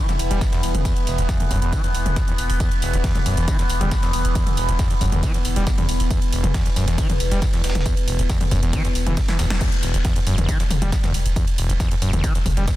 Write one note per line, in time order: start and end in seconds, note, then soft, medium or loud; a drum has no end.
0.00 9.65 E3 medium
0.00 9.65 B3 medium
0.09 0.12 E2 medium
0.09 snare medium
0.09 closed hi-hat medium
0.09 mid tom medium
0.19 0.30 E1 loud
0.19 open hi-hat loud
0.19 tambourine medium
0.31 0.41 E1 medium
0.31 0.39 G3 medium
0.31 closed hi-hat medium
0.41 0.45 E2 loud
0.41 kick loud
0.41 snare loud
0.41 closed hi-hat medium
0.41 ride medium
0.41 tambourine medium
0.53 0.61 E2 medium
0.53 snare medium
0.53 closed hi-hat medium
0.63 0.74 E1 loud
0.63 open hi-hat loud
0.63 tambourine medium
0.74 0.85 E1 medium
0.74 closed hi-hat medium
0.74 mid tom medium
0.85 0.94 E2 medium
0.85 kick loud
0.85 closed hi-hat medium
0.85 ride medium
0.85 tambourine medium
0.96 closed hi-hat soft
1.07 1.18 E1 loud
1.07 1.20 E1 medium
1.07 open hi-hat loud
1.07 tambourine medium
1.18 1.29 E1 medium
1.18 1.22 E2 medium
1.18 closed hi-hat medium
1.29 1.38 E2 loud
1.29 kick loud
1.29 snare loud
1.29 closed hi-hat medium
1.29 ride medium
1.29 tambourine medium
1.40 1.44 E2 medium
1.40 closed hi-hat medium
1.40 mid tom medium
1.51 1.61 E1 loud
1.51 1.60 F#2 loud
1.51 kick medium
1.51 open hi-hat loud
1.51 tambourine medium
1.62 1.72 E1 medium
1.62 1.74 E2 loud
1.62 closed hi-hat medium
1.73 1.82 E3 medium
1.73 kick loud
1.73 closed hi-hat medium
1.73 ride medium
1.73 tambourine medium
1.84 1.87 E2 medium
1.84 closed hi-hat medium
1.94 2.05 E1 loud
1.94 open hi-hat loud
1.94 tambourine medium
2.06 2.16 E1 medium
2.06 closed hi-hat medium
2.06 mid tom medium
2.16 2.23 D#2 loud
2.16 kick loud
2.16 snare loud
2.16 closed hi-hat medium
2.16 ride medium
2.16 tambourine medium
2.28 2.34 D#2 medium
2.28 closed hi-hat medium
2.38 2.49 E1 loud
2.38 open hi-hat loud
2.38 tambourine medium
2.50 2.60 E1 medium
2.50 open hi-hat medium
2.60 2.70 E2 medium
2.60 kick loud
2.60 closed hi-hat medium
2.60 ride medium
2.60 tambourine medium
2.72 closed hi-hat soft
2.82 2.93 E1 loud
2.82 2.95 E1 medium
2.82 open hi-hat loud
2.82 tambourine medium
2.93 3.04 E1 medium
2.93 2.97 E2 medium
2.93 closed hi-hat soft
3.04 3.13 E2 loud
3.04 kick loud
3.04 snare loud
3.04 closed hi-hat medium
3.04 open hi-hat medium
3.04 ride medium
3.15 3.19 E2 medium
3.15 closed hi-hat medium
3.15 mid tom medium
3.26 3.37 E1 loud
3.26 3.35 F#2 loud
3.26 open hi-hat loud
3.26 tambourine medium
3.37 3.48 E1 medium
3.37 3.49 E2 loud
3.37 closed hi-hat soft
3.48 3.57 E3 medium
3.48 kick loud
3.48 closed hi-hat medium
3.48 ride medium
3.48 tambourine medium
3.59 3.63 E2 medium
3.59 snare soft
3.59 closed hi-hat medium
3.70 3.81 E1 loud
3.70 open hi-hat loud
3.70 tambourine medium
3.81 3.91 E1 medium
3.81 3.90 G3 medium
3.81 closed hi-hat medium
3.81 mid tom medium
3.91 3.95 E2 loud
3.91 kick loud
3.91 snare loud
3.91 closed hi-hat medium
3.91 ride medium
3.91 tambourine medium
4.03 4.12 E2 medium
4.03 snare medium
4.03 closed hi-hat soft
4.13 4.24 E1 loud
4.13 open hi-hat loud
4.13 tambourine medium
4.25 4.35 E1 medium
4.25 closed hi-hat medium
4.35 4.45 E2 medium
4.35 kick loud
4.35 closed hi-hat medium
4.35 ride medium
4.35 tambourine medium
4.47 closed hi-hat soft
4.47 mid tom medium
4.57 4.68 E1 loud
4.57 4.70 E1 medium
4.57 open hi-hat loud
4.57 tambourine medium
4.69 4.79 E1 medium
4.69 4.72 E2 medium
4.69 closed hi-hat soft
4.79 4.89 E2 loud
4.79 kick loud
4.79 snare loud
4.79 closed hi-hat medium
4.79 ride medium
4.79 tambourine medium
4.90 4.94 E2 medium
4.90 closed hi-hat soft
5.01 5.12 E1 loud
5.01 5.11 F#2 loud
5.01 kick medium
5.01 open hi-hat loud
5.01 tambourine medium
5.12 5.23 E1 medium
5.12 5.25 E2 loud
5.12 closed hi-hat soft
5.12 mid tom loud
5.23 5.32 E3 medium
5.23 kick loud
5.23 closed hi-hat medium
5.23 ride medium
5.23 tambourine medium
5.34 5.38 E2 medium
5.34 closed hi-hat medium
5.45 5.56 E1 loud
5.45 open hi-hat loud
5.45 tambourine medium
5.56 5.67 E1 medium
5.56 5.65 G3 medium
5.56 closed hi-hat soft
5.67 5.71 E2 loud
5.67 kick loud
5.67 snare loud
5.67 closed hi-hat medium
5.67 ride medium
5.67 tambourine medium
5.78 5.87 E2 medium
5.78 closed hi-hat soft
5.78 mid tom medium
5.89 5.99 E1 loud
5.89 open hi-hat loud
5.89 tambourine medium
6.00 6.10 E1 medium
6.00 open hi-hat medium
6.11 6.20 E2 medium
6.11 kick loud
6.11 closed hi-hat medium
6.11 ride medium
6.11 tambourine medium
6.22 closed hi-hat soft
6.33 6.43 E1 loud
6.33 6.45 E1 medium
6.33 open hi-hat loud
6.33 tambourine medium
6.44 6.54 E1 medium
6.44 6.47 E2 medium
6.44 closed hi-hat medium
6.44 mid tom medium
6.54 6.64 E2 loud
6.54 kick loud
6.54 snare loud
6.54 closed hi-hat medium
6.54 open hi-hat medium
6.54 ride medium
6.66 6.69 E2 medium
6.66 closed hi-hat medium
6.76 6.87 E1 loud
6.76 6.86 F#2 loud
6.76 open hi-hat loud
6.76 tambourine medium
6.88 6.98 E1 medium
6.88 7.00 E2 loud
6.88 snare soft
6.88 closed hi-hat soft
6.98 7.08 E3 medium
6.98 kick loud
6.98 closed hi-hat medium
6.98 ride medium
6.98 tambourine medium
7.10 7.13 E2 medium
7.10 closed hi-hat medium
7.10 mid tom loud
7.20 7.31 E1 loud
7.20 open hi-hat loud
7.20 tambourine medium
7.31 7.42 E1 medium
7.31 7.40 G3 medium
7.31 snare soft
7.31 closed hi-hat medium
7.42 7.46 E2 loud
7.42 kick loud
7.42 snare loud
7.42 closed hi-hat medium
7.42 ride medium
7.42 tambourine medium
7.53 7.62 E2 medium
7.53 snare medium
7.53 closed hi-hat soft
7.64 7.75 E1 loud
7.64 snare medium
7.64 open hi-hat loud
7.64 open hi-hat medium
7.70 snare loud
7.70 open hi-hat medium
7.75 7.86 E1 medium
7.75 snare medium
7.75 closed hi-hat medium
7.75 open hi-hat medium
7.75 mid tom loud
7.81 snare medium
7.81 open hi-hat medium
7.86 7.95 E2 medium
7.86 kick loud
7.86 closed hi-hat medium
7.86 ride medium
7.86 tambourine medium
7.97 closed hi-hat medium
8.08 8.18 E1 loud
8.08 8.21 E1 medium
8.08 open hi-hat loud
8.08 tambourine medium
8.19 8.29 E1 medium
8.19 8.23 E2 medium
8.19 closed hi-hat medium
8.30 8.39 E2 loud
8.30 kick loud
8.30 snare loud
8.30 closed hi-hat medium
8.30 ride medium
8.30 tambourine medium
8.41 8.44 E2 medium
8.41 closed hi-hat medium
8.41 mid tom loud
8.51 8.62 E1 loud
8.51 8.61 F#2 loud
8.51 kick medium
8.51 open hi-hat loud
8.51 tambourine medium
8.63 8.73 E1 medium
8.63 8.75 E2 loud
8.63 closed hi-hat medium
8.73 8.83 E3 medium
8.73 kick loud
8.73 closed hi-hat medium
8.73 ride medium
8.73 tambourine medium
8.85 8.88 E2 medium
8.85 snare soft
8.85 closed hi-hat medium
8.95 9.06 E1 loud
8.95 open hi-hat loud
8.95 tambourine medium
9.07 9.17 E1 medium
9.07 9.15 E3 medium
9.07 closed hi-hat medium
9.07 mid tom loud
9.17 9.21 D#2 medium
9.17 kick loud
9.17 snare loud
9.17 closed hi-hat medium
9.17 open hi-hat medium
9.17 ride medium
9.28 9.37 E3 medium
9.28 snare medium
9.28 closed hi-hat medium
9.39 9.50 E1 loud
9.39 9.45 D#2 loud
9.39 snare loud
9.39 open hi-hat loud
9.39 tambourine medium
9.50 9.61 E1 medium
9.50 snare loud
9.50 snare medium
9.50 open hi-hat medium
9.61 9.70 E2 medium
9.61 kick loud
9.61 closed hi-hat medium
9.61 crash loud
9.61 ride medium
9.61 tambourine medium
9.72 closed hi-hat medium
9.83 9.96 E1 medium
9.83 9.94 E1 loud
9.83 open hi-hat loud
9.83 tambourine medium
9.94 10.05 E1 medium
9.94 9.98 E2 medium
9.94 closed hi-hat medium
10.05 10.14 E2 loud
10.05 kick loud
10.05 snare loud
10.05 closed hi-hat loud
10.05 open hi-hat medium
10.05 ride medium
10.16 10.20 E2 medium
10.16 closed hi-hat medium
10.27 10.37 E1 loud
10.27 10.36 F#2 loud
10.27 open hi-hat loud
10.27 tambourine medium
10.38 10.48 E1 medium
10.38 10.50 E2 loud
10.38 closed hi-hat medium
10.38 mid tom medium
10.48 10.58 E3 medium
10.48 kick loud
10.48 closed hi-hat medium
10.48 ride medium
10.48 tambourine medium
10.60 10.63 E2 medium
10.60 snare medium
10.60 closed hi-hat medium
10.70 10.81 E1 loud
10.70 open hi-hat loud
10.70 mid tom medium
10.70 tambourine medium
10.82 10.92 E1 medium
10.82 10.90 G3 medium
10.82 closed hi-hat medium
10.82 mid tom medium
10.92 10.96 E2 loud
10.92 kick loud
10.92 snare loud
10.92 closed hi-hat medium
10.92 ride medium
10.92 tambourine medium
11.04 11.12 E2 medium
11.04 snare medium
11.04 closed hi-hat medium
11.04 mid tom medium
11.14 11.25 E1 loud
11.14 open hi-hat loud
11.14 tambourine medium
11.26 11.36 E1 medium
11.26 closed hi-hat medium
11.36 11.46 E2 medium
11.36 kick loud
11.36 closed hi-hat loud
11.36 ride medium
11.36 tambourine medium
11.48 closed hi-hat medium
11.58 11.69 E1 loud
11.58 11.71 E1 medium
11.58 open hi-hat loud
11.58 tambourine medium
11.69 11.80 E1 medium
11.69 11.73 E2 medium
11.69 closed hi-hat medium
11.80 11.89 E2 loud
11.80 kick loud
11.80 snare loud
11.80 closed hi-hat medium
11.80 ride medium
11.80 tambourine medium
11.91 11.95 E2 medium
11.91 closed hi-hat medium
12.02 12.13 E1 loud
12.02 12.11 F#2 loud
12.02 open hi-hat loud
12.02 tambourine medium
12.13 12.23 E1 medium
12.13 12.25 E2 loud
12.13 closed hi-hat medium
12.13 mid tom medium
12.24 12.33 E3 medium
12.24 kick loud
12.24 closed hi-hat medium
12.24 ride medium
12.24 tambourine medium
12.35 12.39 E2 medium
12.35 closed hi-hat medium
12.46 12.56 E1 loud
12.46 kick medium
12.46 open hi-hat loud
12.46 mid tom medium
12.46 tambourine medium
12.57 12.67 E1 medium
12.57 12.66 G3 medium
12.57 closed hi-hat medium
12.57 mid tom medium
12.68 12.71 E2 loud
12.68 kick loud
12.68 snare loud
12.68 closed hi-hat medium
12.68 ride medium
12.68 tambourine medium